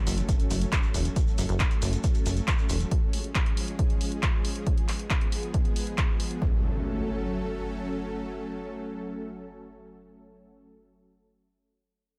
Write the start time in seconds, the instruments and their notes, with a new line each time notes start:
Already playing: impact
0.07 analog synth bass F#1, open hi-hat, shekere
0.18 closed hi-hat, shekere
0.29 kick, closed hi-hat, shekere
0.40 closed hi-hat, shekere
0.51 analog synth bass F#1, open hi-hat, shekere
0.61 closed hi-hat, shekere
0.72 kick, clap, closed hi-hat, shekere
0.83 shekere
0.94 analog synth bass E1, open hi-hat, shekere
1.05 closed hi-hat, shekere
1.16 kick, closed hi-hat, shekere
1.28 shekere
1.38 analog synth bass F#1, open hi-hat, shekere
1.49 analog synth bass F#1, closed hi-hat, shekere
1.59 kick, clap, closed hi-hat, shekere
1.71 closed hi-hat, shekere
1.82 analog synth bass F#1, open hi-hat, shekere
1.93 closed hi-hat, shekere
2.03 kick, closed hi-hat, shekere
2.15 closed hi-hat, shekere
2.26 analog synth bass F#1, open hi-hat, shekere
2.37 closed hi-hat, shekere
2.48 kick, clap, closed hi-hat, shekere
2.58 shekere
2.69 analog synth bass E1, open hi-hat, shekere
2.80 closed hi-hat, shekere
2.91 kick, closed hi-hat
3.13 open hi-hat
3.24 closed hi-hat
3.35 kick, clap, closed hi-hat
3.46 closed hi-hat
3.57 open hi-hat
3.68 closed hi-hat
3.79 kick, closed hi-hat
3.90 closed hi-hat
4.01 open hi-hat
4.12 closed hi-hat
4.23 kick, clap, closed hi-hat
4.45 open hi-hat
4.56 closed hi-hat
4.67 kick, closed hi-hat
4.78 closed hi-hat
4.88 clap, open hi-hat
4.99 closed hi-hat
5.10 kick, clap, closed hi-hat
5.21 closed hi-hat
5.32 open hi-hat
5.43 closed hi-hat
5.54 kick, closed hi-hat
5.65 closed hi-hat
5.76 open hi-hat
5.87 closed hi-hat
5.98 kick, clap, closed hi-hat
6.20 open hi-hat
6.31 closed hi-hat
6.42 supersaw synth F#3 A3 C#4 A4, kick, impact